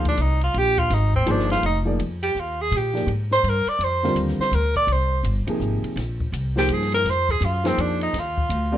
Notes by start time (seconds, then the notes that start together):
Already playing: D2 F3 A#3 D#4 G#4 C5
0.05 D4, kick, ride
0.17 C2, hi-hat pedal, ride
0.22 D#4
0.41 F4, ride
0.54 A#1, ride
0.58 G4
0.78 F4, kick
0.90 G#1 D#4, snare, ride
1.14 C4, kick
1.26 G1 F3 A#3 D#4 G#4 C5, hi-hat pedal, ride
1.31 D4
1.39 snare
1.50 F4, snare, ride
1.62 F1 D#4, ride
1.85 F3 A#3 D#4 G#4 D5
1.99 F2, hi-hat pedal, ride
2.23 G4, ride
2.35 D#2, hi-hat pedal
2.40 F4
2.62 G#4
2.71 A#2, ride
2.77 G4
2.93 F3 A#3 D#4 G#4 D5, snare
3.07 G#2, ride
3.31 C5, snare
3.43 G2, hi-hat pedal, ride
3.49 A#4
3.67 D5, muted upright bass stroke, ride
3.79 F2, ride
3.84 C5
4.03 D3 G3 C4 F4 A#4, snare
4.15 D#2, hi-hat pedal, ride
4.28 snare
4.39 C5, muted upright bass stroke, snare
4.51 D2 A#4, hi-hat pedal, ride
4.76 D5, kick, ride
4.87 C2, ride
4.92 C5
5.23 G1, hi-hat pedal, ride
5.47 C3 F3 A#3 D#4 G#4, muted upright bass stroke, ride
5.60 G#1, hi-hat pedal
5.83 muted upright bass stroke, ride
5.96 A#1, snare, ride
6.20 kick
6.32 C2, hi-hat pedal, ride
6.56 F3 A#3 D#4 G4 G#4 C5, snare
6.68 G2, hi-hat pedal, ride
6.73 G#4
6.82 snare
6.92 A#4, snare, ride
7.05 F2, snare, ride
7.10 C5
7.29 G#4, kick
7.41 F#2, hi-hat pedal, ride
7.45 F4
7.64 F3 A#3 C4 D#4 G#4 C5, snare, ride
7.77 F2 D4, hi-hat pedal, ride
8.01 D#4, ride
8.13 D#2, snare, ride
8.19 F4
8.38 kick
8.49 D2, hi-hat pedal, ride
8.72 G3 C4 F4 A#4 D5